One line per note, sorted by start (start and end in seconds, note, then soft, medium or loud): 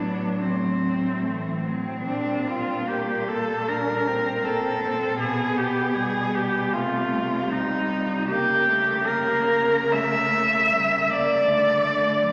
0.00 2.02 A2 soft
0.00 1.25 F#3 soft
0.00 0.41 B3 soft
0.00 0.43 D4 soft
0.41 0.82 A3 soft
0.41 1.65 C4 soft
0.83 1.25 A3 soft
1.24 1.65 E3 soft
1.24 1.64 A3 soft
1.63 2.04 F#3 soft
1.63 2.89 C4 medium
2.05 5.17 A#2 soft
2.05 3.64 G3 soft
2.05 2.48 D4 medium
2.47 2.90 F4 soft
2.87 3.69 A#3 soft
2.87 3.29 G4 soft
3.28 3.70 A4 medium
3.67 4.45 G3 soft
3.67 4.08 D4 soft
3.67 4.46 A#4 medium
4.07 5.20 C4 soft
4.43 4.83 A#3 soft
4.43 5.19 A4 medium
4.82 5.20 C4 soft
5.20 6.76 B2 soft
5.20 5.98 B3 soft
5.20 6.78 B3 soft
5.20 5.59 G#4 medium
5.58 5.96 G4 medium
5.95 6.76 G3 medium
5.95 6.36 G#4 medium
6.35 6.75 G4 medium
6.74 8.29 C3 medium
6.74 7.51 A3 soft
6.74 7.16 A3 soft
6.74 7.53 F4 medium
7.15 7.52 G3 soft
7.51 8.31 G3 soft
7.51 8.29 G3 soft
7.51 8.28 D#4 medium
8.29 11.44 C#3 medium
8.29 8.70 A#3 medium
8.29 9.05 A#3 soft
8.29 9.09 G4 medium
8.69 9.10 A3 soft
9.07 9.94 A#3 medium
9.07 9.92 A#3 soft
9.07 9.94 A#4 medium
9.93 10.73 A3 soft
9.93 11.45 A#3 soft
9.93 11.12 E5 medium
10.72 11.12 G3 medium
11.11 11.47 A#3 medium
11.11 12.32 D5 medium
11.46 12.32 D3 medium
11.46 12.32 A3 medium
11.46 12.24 A3 medium
12.23 12.32 F#3 soft